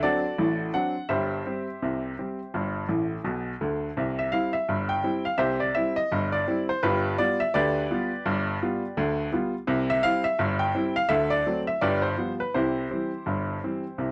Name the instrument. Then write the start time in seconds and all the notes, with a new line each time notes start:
upright piano
0.03 F#3 C4 D4 F#4 A4 D5
0.38 A1 A2
0.74 F#3 C4 D4 F#5
1.09 G1 G2 G4 C5 E5
1.46 G3 C4
1.82 C2 C3
2.19 G3 C4
2.54 G1 G2
2.89 A1 A2
3.24 B1 B2
3.61 D2 D3
3.97 C2 C3
4.19 E5
4.32 G3 C4 E4 F5
4.53 E5
4.69 G1 G2
4.89 G5
5.04 G3 C4 E4
5.25 F5
5.38 C2 C3 G4 C5 E5
5.60 D5
5.75 G3 C4 E4 E5
5.96 D#5
6.12 G1 G2
6.32 D5
6.47 G3 C4 E4
6.69 C5
6.83 G1 G2 F4 G4 B4
7.18 G3 B3 F4 D5
7.40 E5
7.54 D2 D3 G4 B4 D5
7.91 G3 B3 F4
8.26 G1 G2
8.62 G3 B3 F4
8.97 D2 D3
9.32 G3 B3 F4
9.67 C2 C3
9.90 E5
10.03 G3 C4 E4 F5
10.24 E5
10.39 G1 G2
10.59 G5
10.74 G3 C4 E4
10.96 F5
11.09 D2 D3 E5
11.30 D5
11.46 F#3 A3 C4
11.67 E5
11.81 G1 G2 G4 B4 D5
12.02 C5
12.17 F3 G3 B3
12.40 B4
12.54 C2 C3 E4 G4 C5
12.91 E3 G3 C4
13.26 G1 G2
13.63 E3 G3 C4
13.98 C2 C3